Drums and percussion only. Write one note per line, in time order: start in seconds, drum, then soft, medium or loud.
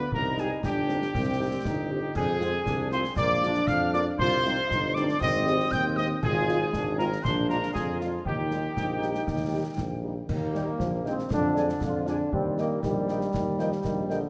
0.12 concert bass drum medium
0.38 snare soft
0.63 concert bass drum medium
0.63 snare medium
0.89 snare soft
1.02 snare soft
1.15 concert bass drum medium
1.15 snare medium
1.65 concert bass drum medium
1.65 snare medium
2.15 concert bass drum medium
2.15 crash soft
2.41 snare soft
2.66 concert bass drum medium
2.66 snare medium
2.91 snare soft
3.04 snare soft
3.16 concert bass drum medium
3.16 snare medium
3.42 snare medium
3.54 snare medium
3.67 concert bass drum medium
3.67 snare medium
3.93 snare soft
4.19 concert bass drum medium
4.45 snare medium
4.71 concert bass drum medium
4.71 snare medium
4.96 snare soft
5.09 snare medium
5.21 concert bass drum medium
5.21 snare medium
5.47 snare soft
5.60 snare soft
5.72 concert bass drum medium
5.72 snare medium
5.97 snare soft
6.23 concert bass drum medium
6.23 crash soft
6.49 snare soft
6.73 concert bass drum medium
6.73 snare medium
6.99 snare soft
7.12 snare soft
7.25 concert bass drum medium
7.25 snare medium
7.50 snare soft
7.63 snare soft
7.75 concert bass drum medium
7.75 snare medium
8.01 snare soft
8.25 concert bass drum medium
8.51 snare soft
8.77 concert bass drum medium
8.77 snare medium
9.02 snare soft
9.15 snare soft
9.27 concert bass drum medium
9.27 snare medium
9.78 concert bass drum medium
9.78 snare medium
10.29 concert bass drum medium
10.29 crash soft
10.55 snare soft
10.80 concert bass drum medium
10.80 snare medium
11.06 snare soft
11.19 snare soft
11.30 concert bass drum medium
11.30 snare medium
11.56 snare soft
11.69 snare soft
11.81 concert bass drum medium
11.81 snare medium
12.07 snare soft
12.33 concert bass drum medium
12.58 snare soft
12.83 concert bass drum medium
12.83 snare medium
13.08 snare soft
13.21 snare soft
13.34 concert bass drum medium
13.34 snare medium
13.59 snare soft
13.72 snare soft
13.84 concert bass drum medium
13.84 snare medium
14.10 snare soft